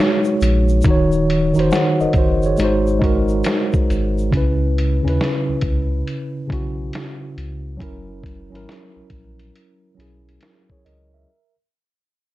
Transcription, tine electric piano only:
0.00 0.87 G#3 medium
0.00 0.86 D#4 medium
0.00 0.86 F#4 medium
0.00 0.86 G#4 medium
0.00 0.77 C#5 medium
0.84 1.47 D#3 medium
0.84 1.48 D#4 medium
0.88 1.49 F#4 medium
0.88 1.51 C#5 medium
1.54 2.57 D#3 medium
1.54 2.58 D#4 medium
1.58 1.72 F#4 medium
1.58 1.74 C5 medium
1.72 1.99 C#5 medium
1.72 1.99 F#5 medium
2.01 2.15 A#4 medium
2.01 2.15 D#5 medium
2.18 2.44 F#4 medium
2.18 2.43 C5 medium
2.46 2.86 G#4 soft
2.46 2.86 C#5 medium
2.58 2.98 G#3 medium
2.58 3.00 D#4 medium
2.62 3.01 F#4 medium
2.62 3.02 C5 medium
2.99 4.21 G#3 medium
2.99 4.22 D#4 medium
3.03 4.24 F#4 medium
3.03 4.25 A#4 medium
4.31 4.95 C#3 medium
4.31 4.96 C#4 medium
4.35 4.97 E4 medium
4.35 4.98 B4 medium
5.03 6.38 C#3 medium
5.03 6.39 C#4 medium
5.07 6.40 E4 medium
5.07 6.41 B4 medium
6.47 7.69 C#3 medium
6.47 7.70 C#4 medium
6.51 7.71 E4 medium
6.51 7.72 F#4 medium
7.77 8.42 F#3 medium
7.77 8.43 C#4 medium
7.81 8.44 E4 medium
7.81 8.45 A#4 medium
8.50 9.86 F#3 medium
8.50 9.87 C#4 medium
8.54 9.88 E4 medium
8.54 9.89 A#4 medium
9.95 11.17 F#3 medium
9.95 11.18 C#4 medium
9.99 10.42 E4 medium
9.99 10.43 G#4 medium
10.43 10.70 E4 soft
10.43 10.69 A#4 medium
10.72 10.85 G#4 medium
10.72 10.85 C#5 medium
10.85 11.12 A#4 medium
10.85 11.12 D#5 medium
11.14 11.55 A#4 soft
11.14 11.55 E5 medium

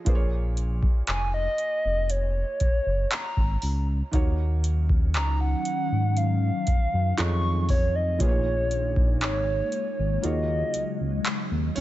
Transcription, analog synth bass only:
0.06 0.86 A#1 loud
1.08 1.48 F1 medium
1.85 2.44 F1 medium
2.61 2.71 F#1 medium
2.86 3.06 F#1 medium
3.37 3.57 G#1 medium
3.63 4.02 C#2 medium
4.13 5.17 D#2 loud
5.16 5.55 C#2 loud
5.92 6.51 G#2 medium
6.68 6.78 F#2 soft
6.93 7.13 F#2 medium
7.19 8.22 F2 loud
8.20 9.24 A#1 loud
9.23 9.62 G#1 loud
9.99 10.18 G#1 medium
10.24 10.63 D#2 loud
10.75 10.85 C#2 soft
11.01 11.20 C#2 medium
11.51 11.71 D#2 medium
11.77 11.81 C#2 medium

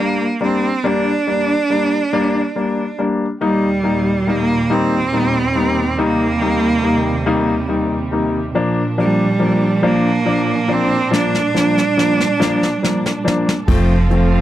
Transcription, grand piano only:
0.00 0.25 G3 medium
0.00 0.25 A#3 medium
0.00 0.25 D4 medium
0.41 0.68 G3 medium
0.41 0.68 A#3 medium
0.41 0.68 D4 medium
0.84 1.11 G3 medium
0.84 1.11 A#3 medium
0.84 1.11 D4 medium
1.27 1.53 G3 medium
1.27 1.54 A#3 medium
1.27 1.54 D4 medium
1.70 1.96 G3 medium
1.70 1.97 A#3 soft
1.70 1.97 D4 medium
2.13 2.39 G3 medium
2.13 2.39 A#3 medium
2.13 2.39 D4 medium
2.56 2.82 G3 medium
2.56 2.82 A#3 medium
2.56 2.82 D4 medium
2.98 3.25 G3 medium
2.98 3.25 A#3 medium
2.98 3.25 D4 medium
3.41 3.67 G3 medium
3.41 3.68 A#3 medium
3.41 3.68 D#4 medium
3.83 4.10 G3 medium
3.83 4.10 A#3 medium
3.83 4.10 D#4 medium
4.27 4.53 G3 medium
4.27 4.53 A#3 medium
4.27 4.54 D#4 medium
4.70 4.96 G3 medium
4.70 4.96 A#3 medium
4.70 4.96 D#4 medium
5.13 5.39 G3 medium
5.13 5.39 A#3 soft
5.13 5.39 D#4 medium
5.55 5.82 G3 medium
5.55 5.82 A#3 medium
5.55 5.82 D#4 medium
5.98 6.24 G3 medium
5.98 6.25 A#3 medium
5.98 6.25 D#4 medium
6.41 6.67 G3 medium
6.41 6.67 A#3 medium
6.41 6.67 D#4 medium
6.83 7.10 G3 medium
6.83 7.10 A#3 medium
6.83 7.10 D#4 medium
7.26 7.53 G3 medium
7.26 7.53 A#3 medium
7.26 7.53 D#4 medium
7.69 7.95 G3 medium
7.69 7.95 A#3 soft
7.69 7.95 D#4 medium
8.11 8.38 G3 medium
8.11 8.38 A#3 medium
8.11 8.38 D#4 medium
8.55 8.81 F3 medium
8.55 8.81 A#3 medium
8.55 8.81 D4 medium
8.98 9.24 F3 medium
8.98 9.24 A#3 medium
8.98 9.24 D4 medium
9.39 9.66 F3 medium
9.39 9.66 A#3 medium
9.39 9.66 D4 medium
9.82 10.09 F3 medium
9.82 10.09 A#3 medium
9.82 10.09 D4 medium
10.25 10.52 F3 medium
10.25 10.52 A#3 medium
10.25 10.52 D4 medium
10.68 10.95 F3 medium
10.68 10.95 A#3 medium
10.68 10.95 D4 medium
11.11 11.37 F3 medium
11.11 11.38 A#3 medium
11.11 11.38 D4 medium
11.55 11.81 F3 medium
11.55 11.81 A#3 medium
11.55 11.81 D4 medium
11.97 12.23 F3 medium
11.97 12.23 A#3 soft
11.97 12.23 D4 medium
12.40 12.66 F3 medium
12.40 12.66 A#3 medium
12.40 12.66 D4 medium
12.83 13.09 F3 medium
12.83 13.09 A#3 soft
12.83 13.09 D4 medium
13.24 13.51 F3 medium
13.24 13.51 A#3 medium
13.24 13.51 D4 medium
13.68 13.94 F3 medium
13.68 13.94 A3 medium
13.68 13.94 C4 medium
14.10 14.37 F3 medium
14.10 14.37 A3 medium
14.10 14.37 C4 medium

